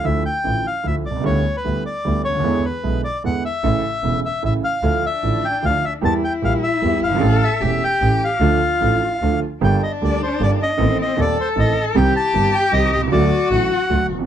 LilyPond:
<<
  \new Staff \with { instrumentName = "Bandoneon" } { \time 3/4 \key d \minor \tempo 4 = 151 e''8 g''4 f''8 e''8 d''8 | cis''8. b'8. d''4 cis''8~ | cis''8 b'4 d''8 fis''8 e''8~ | e''4. e''8 e''8 f''8~ |
f''8 e''4 g''8 f''8 e''8 | a''8 g''8 f''8 e''4 f''8~ | f''8 e''4 g''4 f''8~ | f''2~ f''8 r8 |
\key g \minor g''8 ees''8 d''8 c''8 d''8 ees''8~ | ees''8 ees''8 d''8 c''8 ees''8. r16 | g''8 a''4 g''8 ees''8 ees''8 | d''4 fis''4. r8 | }
  \new Staff \with { instrumentName = "Cello" } { \time 3/4 \key d \minor r2. | r2. | r2. | r2. |
d'2. | e'2. | a'4 g'2 | f'2~ f'8 r8 |
\key g \minor d'2. | c'4 a'2 | g'2. | fis'2~ fis'8 r8 | }
  \new Staff \with { instrumentName = "Grand piano" } { \clef bass \time 3/4 \key d \minor <d, d f a e'>8 r8 <a,, a, d f a e'>8 r8 <d, d f a e'>8 r32 b,,32 c,32 cis,32 | <d, d g b e'>8 r8 <d, d g b e'>8 r8 <d, d g b e'>8 r32 cis,32 d,32 ees,32 | <e, d e gis b e'>8 r8 <b,, b, d gis b e'>8 r8 <e, d e gis b e'>8 r8 | <a,, a, cis e a e'>8 r8 <e,, e, cis e a e'>8 r8 <a,, a, cis e a e'>8 r8 |
<d, d f a e'>8 r8 <a,, a, d f a e'>8 r8 <d, d f a e'>8 r8 | <e, e g bes g'>8 r8 <bes,, bes, e g bes g'>8 r8 <e, e g bes g'>8 r32 fis,,32 g,,32 gis,,32 | <a,, a, e a cis' g'>8 r8 <e,, e, e a cis' g'>8 r8 <a,, a, e a cis' g'>8 r8 | <d, d f a d' a'>8 r8 <a,, a, f a d' a'>8 r8 <d, d f a d' a'>8 r8 |
\key g \minor <g,, g, d g bes g'>8 r8 <d, d g bes g'>8 r8 <g,, g, d g bes g'>8 r8 | <a,, a, ees a c' a'>8 r8 <ees,, ees, ees a c' a'>8 r8 <a,, a, ees a c' a'>8 r8 | <c, c ees g c' g'>8 r8 <g,, g, ees g c' g'>8 r8 <c, c ees g c' g'>8 r32 b,,32 c,32 cis,32 | <d, d fis a fis'>8 r8 <a,, a, d fis a fis'>8 r8 <d, d fis a fis'>8 r32 e,32 f,32 r32 | }
  \new Staff \with { instrumentName = "Double bass" } { \clef bass \time 3/4 \key d \minor d,8 r8 a,,8 r8 d,8 c,8 | d,8 r8 d,8 r8 d,8 d,8 | e,8 r8 b,,8 r8 e,8 r8 | a,,8 r8 e,,8 r8 a,,8 r8 |
d,8 r8 a,,8 r8 d,8 r8 | e,8 r8 bes,,8 r8 e,8 g,,8 | a,,8 r8 e,,8 r8 a,,8 r8 | d,8 r8 a,,8 r8 d,8 r8 |
\key g \minor g,,8 r8 d,8 r8 g,,8 r8 | a,,8 r8 ees,8 r8 a,,8 r8 | c,8 r8 g,,8 r8 c,8 c,8 | d,8 r8 a,,8 r8 d,8 f,,8 | }
>>